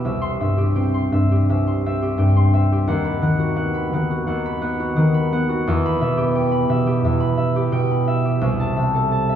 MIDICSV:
0, 0, Header, 1, 2, 480
1, 0, Start_track
1, 0, Key_signature, 1, "minor"
1, 0, Tempo, 717703
1, 47, Time_signature, 4, 2, 24, 8
1, 1008, Tempo, 693642
1, 6439, End_track
2, 0, Start_track
2, 0, Title_t, "Harp"
2, 0, Program_c, 0, 46
2, 0, Note_on_c, 0, 64, 33
2, 0, Note_on_c, 0, 67, 39
2, 0, Note_on_c, 0, 79, 48
2, 32, Note_on_c, 0, 36, 48
2, 36, Note_on_c, 0, 76, 45
2, 144, Note_on_c, 0, 84, 57
2, 267, Note_off_c, 0, 76, 0
2, 270, Note_on_c, 0, 43, 39
2, 275, Note_on_c, 0, 76, 47
2, 377, Note_off_c, 0, 67, 0
2, 385, Note_on_c, 0, 67, 44
2, 497, Note_off_c, 0, 79, 0
2, 505, Note_on_c, 0, 79, 49
2, 509, Note_on_c, 0, 60, 41
2, 550, Note_off_c, 0, 64, 0
2, 621, Note_off_c, 0, 84, 0
2, 629, Note_on_c, 0, 84, 45
2, 741, Note_off_c, 0, 43, 0
2, 744, Note_off_c, 0, 76, 0
2, 749, Note_on_c, 0, 43, 45
2, 752, Note_on_c, 0, 76, 45
2, 872, Note_off_c, 0, 67, 0
2, 880, Note_on_c, 0, 67, 39
2, 992, Note_off_c, 0, 36, 0
2, 994, Note_off_c, 0, 76, 0
2, 998, Note_on_c, 0, 36, 47
2, 1004, Note_on_c, 0, 76, 46
2, 1114, Note_off_c, 0, 84, 0
2, 1123, Note_on_c, 0, 84, 49
2, 1245, Note_off_c, 0, 76, 0
2, 1246, Note_off_c, 0, 60, 0
2, 1253, Note_on_c, 0, 60, 43
2, 1255, Note_on_c, 0, 76, 49
2, 1356, Note_off_c, 0, 67, 0
2, 1365, Note_on_c, 0, 67, 48
2, 1466, Note_off_c, 0, 43, 0
2, 1466, Note_off_c, 0, 79, 0
2, 1471, Note_on_c, 0, 43, 47
2, 1477, Note_on_c, 0, 79, 53
2, 1593, Note_off_c, 0, 84, 0
2, 1601, Note_on_c, 0, 84, 52
2, 1710, Note_off_c, 0, 76, 0
2, 1712, Note_off_c, 0, 60, 0
2, 1718, Note_on_c, 0, 60, 45
2, 1721, Note_on_c, 0, 76, 46
2, 1840, Note_off_c, 0, 67, 0
2, 1848, Note_on_c, 0, 67, 43
2, 1954, Note_on_c, 0, 39, 58
2, 1961, Note_on_c, 0, 78, 49
2, 1971, Note_off_c, 0, 43, 0
2, 1971, Note_off_c, 0, 79, 0
2, 1974, Note_off_c, 0, 36, 0
2, 1975, Note_off_c, 0, 76, 0
2, 1975, Note_off_c, 0, 84, 0
2, 1977, Note_off_c, 0, 60, 0
2, 1982, Note_off_c, 0, 67, 0
2, 2073, Note_on_c, 0, 83, 59
2, 2185, Note_off_c, 0, 78, 0
2, 2191, Note_on_c, 0, 51, 45
2, 2195, Note_on_c, 0, 78, 52
2, 2312, Note_on_c, 0, 66, 44
2, 2423, Note_off_c, 0, 78, 0
2, 2428, Note_on_c, 0, 59, 44
2, 2433, Note_on_c, 0, 78, 53
2, 2546, Note_off_c, 0, 83, 0
2, 2555, Note_on_c, 0, 83, 45
2, 2678, Note_off_c, 0, 51, 0
2, 2679, Note_off_c, 0, 78, 0
2, 2685, Note_on_c, 0, 51, 47
2, 2689, Note_on_c, 0, 78, 52
2, 2798, Note_off_c, 0, 66, 0
2, 2806, Note_on_c, 0, 66, 47
2, 2911, Note_off_c, 0, 78, 0
2, 2916, Note_off_c, 0, 39, 0
2, 2919, Note_on_c, 0, 78, 46
2, 2924, Note_on_c, 0, 39, 44
2, 3040, Note_off_c, 0, 83, 0
2, 3048, Note_on_c, 0, 83, 53
2, 3150, Note_off_c, 0, 78, 0
2, 3153, Note_off_c, 0, 59, 0
2, 3159, Note_on_c, 0, 78, 54
2, 3161, Note_on_c, 0, 59, 47
2, 3278, Note_off_c, 0, 66, 0
2, 3286, Note_on_c, 0, 66, 47
2, 3389, Note_off_c, 0, 78, 0
2, 3392, Note_off_c, 0, 51, 0
2, 3397, Note_on_c, 0, 78, 62
2, 3400, Note_on_c, 0, 51, 54
2, 3514, Note_off_c, 0, 83, 0
2, 3522, Note_on_c, 0, 83, 54
2, 3641, Note_off_c, 0, 59, 0
2, 3642, Note_off_c, 0, 78, 0
2, 3648, Note_on_c, 0, 59, 49
2, 3652, Note_on_c, 0, 78, 54
2, 3756, Note_off_c, 0, 66, 0
2, 3764, Note_on_c, 0, 66, 46
2, 3891, Note_on_c, 0, 40, 63
2, 3895, Note_on_c, 0, 76, 53
2, 3903, Note_off_c, 0, 51, 0
2, 3903, Note_off_c, 0, 66, 0
2, 3905, Note_off_c, 0, 39, 0
2, 3907, Note_off_c, 0, 78, 0
2, 4009, Note_off_c, 0, 83, 0
2, 4017, Note_on_c, 0, 83, 64
2, 4115, Note_off_c, 0, 76, 0
2, 4122, Note_on_c, 0, 47, 49
2, 4126, Note_on_c, 0, 76, 57
2, 4238, Note_on_c, 0, 67, 54
2, 4361, Note_on_c, 0, 79, 56
2, 4465, Note_off_c, 0, 83, 0
2, 4473, Note_on_c, 0, 83, 56
2, 4587, Note_off_c, 0, 47, 0
2, 4590, Note_off_c, 0, 76, 0
2, 4594, Note_on_c, 0, 47, 48
2, 4600, Note_on_c, 0, 76, 58
2, 4707, Note_off_c, 0, 67, 0
2, 4716, Note_on_c, 0, 67, 49
2, 4831, Note_off_c, 0, 76, 0
2, 4835, Note_off_c, 0, 40, 0
2, 4840, Note_on_c, 0, 76, 53
2, 4844, Note_on_c, 0, 40, 50
2, 4940, Note_off_c, 0, 83, 0
2, 4948, Note_on_c, 0, 83, 60
2, 5060, Note_off_c, 0, 76, 0
2, 5069, Note_on_c, 0, 76, 53
2, 5188, Note_off_c, 0, 67, 0
2, 5196, Note_on_c, 0, 67, 55
2, 5300, Note_off_c, 0, 47, 0
2, 5301, Note_off_c, 0, 79, 0
2, 5307, Note_on_c, 0, 47, 54
2, 5310, Note_on_c, 0, 79, 57
2, 5429, Note_off_c, 0, 83, 0
2, 5438, Note_on_c, 0, 83, 57
2, 5546, Note_off_c, 0, 76, 0
2, 5554, Note_on_c, 0, 76, 50
2, 5666, Note_off_c, 0, 67, 0
2, 5675, Note_on_c, 0, 67, 46
2, 5778, Note_off_c, 0, 76, 0
2, 5787, Note_on_c, 0, 36, 65
2, 5788, Note_on_c, 0, 76, 55
2, 5816, Note_off_c, 0, 47, 0
2, 5816, Note_off_c, 0, 79, 0
2, 5818, Note_off_c, 0, 67, 0
2, 5820, Note_off_c, 0, 83, 0
2, 5824, Note_off_c, 0, 40, 0
2, 5825, Note_off_c, 0, 59, 0
2, 5915, Note_on_c, 0, 81, 67
2, 6025, Note_off_c, 0, 76, 0
2, 6029, Note_on_c, 0, 48, 49
2, 6033, Note_on_c, 0, 76, 50
2, 6157, Note_on_c, 0, 69, 46
2, 6265, Note_off_c, 0, 81, 0
2, 6273, Note_on_c, 0, 81, 50
2, 6388, Note_off_c, 0, 76, 0
2, 6396, Note_on_c, 0, 76, 55
2, 6439, Note_off_c, 0, 36, 0
2, 6439, Note_off_c, 0, 48, 0
2, 6439, Note_off_c, 0, 69, 0
2, 6439, Note_off_c, 0, 76, 0
2, 6439, Note_off_c, 0, 81, 0
2, 6439, End_track
0, 0, End_of_file